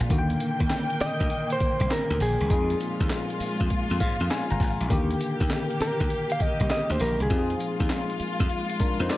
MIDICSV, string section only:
0, 0, Header, 1, 2, 480
1, 0, Start_track
1, 0, Tempo, 600000
1, 82, Time_signature, 4, 2, 24, 8
1, 7338, End_track
2, 0, Start_track
2, 0, Title_t, "String section"
2, 0, Program_c, 0, 48
2, 0, Note_on_c, 0, 46, 92
2, 82, Note_on_c, 0, 58, 84
2, 83, Note_on_c, 0, 79, 98
2, 1983, Note_off_c, 0, 58, 0
2, 1984, Note_off_c, 0, 79, 0
2, 2001, Note_on_c, 0, 65, 97
2, 2004, Note_on_c, 0, 56, 84
2, 3903, Note_off_c, 0, 65, 0
2, 3904, Note_off_c, 0, 56, 0
2, 3926, Note_on_c, 0, 58, 81
2, 3926, Note_on_c, 0, 67, 101
2, 5825, Note_off_c, 0, 58, 0
2, 5825, Note_off_c, 0, 67, 0
2, 5835, Note_on_c, 0, 65, 102
2, 5837, Note_on_c, 0, 56, 77
2, 7338, Note_off_c, 0, 46, 0
2, 7338, Note_off_c, 0, 56, 0
2, 7338, Note_off_c, 0, 65, 0
2, 7338, End_track
0, 0, End_of_file